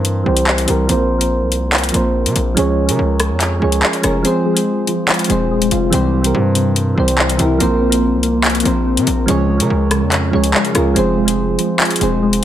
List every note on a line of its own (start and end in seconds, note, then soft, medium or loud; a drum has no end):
0.00 0.24 G2 loud
0.00 0.24 E3 loud
0.00 0.25 G3 loud
0.00 0.26 C4 loud
0.00 0.27 G4 loud
0.00 0.20 A#4 medium
0.00 0.28 C5 loud
0.05 closed hi-hat medium
0.24 0.66 C2 loud
0.24 0.63 E3 medium
0.24 0.63 G3 medium
0.24 0.64 C4 medium
0.24 0.65 G4 medium
0.28 0.65 C5 loud
0.37 closed hi-hat medium
0.47 clap loud
0.58 closed hi-hat medium
0.66 0.88 C2 loud
0.66 0.86 E3 loud
0.66 0.86 G3 medium
0.66 0.87 C4 medium
0.66 0.88 G4 medium
0.66 closed hi-hat medium
0.70 0.88 A#4 loud
0.87 1.43 A#1 loud
0.87 1.16 F3 loud
0.87 1.17 A#3 loud
0.87 1.18 C4 loud
0.87 1.18 A#4 loud
0.87 closed hi-hat medium
0.92 1.19 C5 loud
1.18 1.86 F3 medium
1.18 1.86 A#3 medium
1.18 1.87 C4 medium
1.18 1.87 A#4 medium
1.18 closed hi-hat loud
1.23 1.88 C5 medium
1.42 1.91 C2 medium
1.52 closed hi-hat medium
1.73 clap loud
1.73 closed hi-hat soft
1.78 closed hi-hat medium
1.84 closed hi-hat medium
1.89 2.50 F3 medium
1.89 closed hi-hat medium
1.93 2.27 A#1 loud
1.93 2.50 A#3 medium
1.93 2.51 C4 medium
1.93 2.51 A#4 medium
1.93 2.52 C5 loud
1.93 closed hi-hat medium
2.25 2.35 C#3 loud
2.25 closed hi-hat medium
2.36 2.56 A#1 loud
2.36 closed hi-hat medium
2.55 2.90 C#2 loud
2.55 2.84 F3 loud
2.55 2.85 G#3 loud
2.55 2.85 C#4 loud
2.55 2.86 G#4 loud
2.55 closed hi-hat medium
2.59 2.86 C#5 loud
2.86 2.98 C#3 loud
2.86 3.54 F3 medium
2.86 3.54 G#3 medium
2.86 3.55 C#4 medium
2.86 3.55 G#4 medium
2.86 closed hi-hat loud
2.91 3.56 A#4 medium
2.99 3.32 C#2 loud
3.20 cross-stick loud
3.20 closed hi-hat medium
3.30 3.60 F2 loud
3.40 clap medium
3.40 closed hi-hat medium
3.60 3.82 C#2 loud
3.60 3.99 F3 medium
3.60 3.99 G#3 medium
3.60 4.00 C#4 medium
3.60 4.00 G#4 medium
3.64 4.01 C#5 loud
3.72 closed hi-hat medium
3.83 clap loud
3.93 closed hi-hat medium
4.01 4.25 F1 loud
4.01 4.22 F3 medium
4.01 4.22 G#3 medium
4.01 4.23 C#4 medium
4.01 4.23 G#4 medium
4.01 cross-stick medium
4.01 closed hi-hat medium
4.01 open hi-hat medium
4.06 4.24 A#4 medium
4.23 4.52 F3 loud
4.23 4.87 F3 medium
4.23 4.53 G#3 loud
4.23 4.53 C4 loud
4.23 4.54 G#4 loud
4.23 closed hi-hat medium
4.27 4.54 C5 loud
4.46 5.28 G#3 medium
4.54 5.21 F3 medium
4.54 5.22 G#3 medium
4.54 5.23 C4 medium
4.54 5.23 G#4 medium
4.54 closed hi-hat medium
4.59 5.24 C5 medium
4.87 5.07 F3 medium
4.87 closed hi-hat medium
5.08 5.92 F3 medium
5.08 clap loud
5.08 closed hi-hat soft
5.14 closed hi-hat medium
5.19 closed hi-hat medium
5.24 5.85 F3 medium
5.24 closed hi-hat medium
5.29 5.70 E1 loud
5.29 5.86 G#3 medium
5.29 5.50 G#3 medium
5.29 5.86 C4 medium
5.29 5.87 G#4 medium
5.29 5.88 C5 loud
5.29 closed hi-hat medium
5.51 5.93 G#3 loud
5.62 closed hi-hat medium
5.71 5.92 F1 loud
5.71 5.93 F4 medium
5.71 closed hi-hat medium
5.90 6.33 C2 loud
5.90 6.54 C3 medium
5.90 6.20 E3 loud
5.90 6.20 G3 loud
5.90 6.21 C4 loud
5.90 6.22 G4 loud
5.90 closed hi-hat medium
5.95 6.22 C5 loud
6.14 6.96 G3 medium
6.22 6.89 E3 medium
6.22 6.90 G3 medium
6.22 6.90 C4 medium
6.22 6.91 G4 medium
6.22 closed hi-hat loud
6.26 6.91 A#4 medium
6.35 6.95 G2 loud
6.55 6.75 C3 medium
6.55 closed hi-hat medium
6.76 7.60 C3 medium
6.76 closed hi-hat medium
6.95 7.38 C2 loud
6.95 7.34 E3 medium
6.95 7.35 G3 medium
6.95 7.17 G3 medium
6.95 7.35 C4 medium
6.95 7.36 G4 medium
7.00 7.36 C5 loud
7.08 closed hi-hat medium
7.18 7.61 G3 medium
7.18 clap loud
7.29 closed hi-hat medium
7.37 7.60 C2 loud
7.37 7.57 E3 loud
7.37 7.58 G3 medium
7.37 7.58 C4 medium
7.37 7.61 E4 medium
7.37 7.59 G4 medium
7.37 closed hi-hat medium
7.42 7.60 A#4 loud
7.58 8.14 A#1 loud
7.58 7.88 F3 loud
7.58 7.88 A#3 loud
7.58 8.22 A#3 medium
7.58 7.89 C4 loud
7.58 7.90 A#4 loud
7.58 closed hi-hat medium
7.63 7.90 C5 loud
7.81 8.65 C4 medium
7.90 8.57 F3 medium
7.90 8.58 A#3 medium
7.90 8.58 C4 medium
7.90 8.59 A#4 medium
7.90 closed hi-hat loud
7.94 8.59 C5 medium
8.13 8.63 C2 loud
8.23 8.43 A#3 medium
8.23 closed hi-hat medium
8.44 clap loud
8.44 closed hi-hat soft
8.50 closed hi-hat medium
8.55 closed hi-hat medium
8.60 9.21 F3 medium
8.60 closed hi-hat medium
8.64 8.98 A#1 loud
8.64 9.22 A#3 medium
8.64 9.22 C4 medium
8.64 8.85 C4 medium
8.64 9.23 A#4 medium
8.64 9.23 C5 medium
8.64 closed hi-hat medium
8.86 9.28 C4 medium
8.97 9.07 C#3 loud
8.97 closed hi-hat medium
9.07 9.27 A#1 loud
9.07 9.28 A#4 medium
9.07 closed hi-hat medium
9.26 9.61 C#2 loud
9.26 9.90 C#3 medium
9.26 9.55 F3 loud
9.26 9.56 G#3 loud
9.26 9.57 C#4 loud
9.26 9.57 G#4 loud
9.26 closed hi-hat medium
9.30 9.58 C#5 loud
9.50 10.32 G#3 medium
9.58 9.70 C#3 loud
9.58 10.25 F3 medium
9.58 10.26 G#3 medium
9.58 10.26 C#4 medium
9.58 10.27 G#4 medium
9.58 closed hi-hat loud
9.62 10.27 A#4 medium
9.70 10.03 C#2 loud
9.91 10.11 C#3 medium
9.91 cross-stick loud
9.91 closed hi-hat medium
10.02 10.32 F2 loud
10.12 10.96 C#3 medium
10.12 clap medium
10.12 closed hi-hat medium
10.31 10.53 C#2 loud
10.31 10.70 F3 medium
10.31 10.70 G#3 medium
10.31 10.53 G#3 medium
10.31 10.71 C#4 medium
10.31 10.72 G#4 medium
10.36 10.72 C#5 loud
10.44 closed hi-hat medium
10.54 10.96 G#3 medium
10.54 clap loud
10.65 closed hi-hat medium
10.73 10.95 C#2 loud
10.73 10.93 F3 medium
10.73 10.93 G#3 medium
10.73 10.94 C#4 medium
10.73 10.96 F4 medium
10.73 10.95 G#4 medium
10.73 cross-stick medium
10.73 closed hi-hat medium
10.73 open hi-hat medium
10.77 10.95 A#4 medium
10.94 11.57 F1 loud
10.94 11.23 F3 loud
10.94 11.58 F3 medium
10.94 11.24 G#3 loud
10.94 11.25 C4 loud
10.94 11.25 G#4 loud
10.94 closed hi-hat medium
10.99 11.26 C5 loud
11.17 12.00 G#3 medium
11.25 11.93 F3 medium
11.25 11.93 G#3 medium
11.25 11.94 C4 medium
11.25 11.94 G#4 medium
11.25 closed hi-hat loud
11.30 11.95 C5 medium
11.59 11.78 F3 medium
11.59 closed hi-hat medium
11.80 12.44 F3 medium
11.80 clap loud
11.80 closed hi-hat soft
11.85 closed hi-hat medium
11.91 closed hi-hat medium
11.96 12.44 F3 medium
11.96 closed hi-hat medium
12.00 12.41 E1 loud
12.00 12.44 G#3 medium
12.00 12.21 G#3 medium
12.00 12.44 C4 medium
12.00 12.44 G#4 medium
12.00 12.44 C5 loud
12.00 closed hi-hat medium
12.23 12.44 G#3 loud
12.33 closed hi-hat medium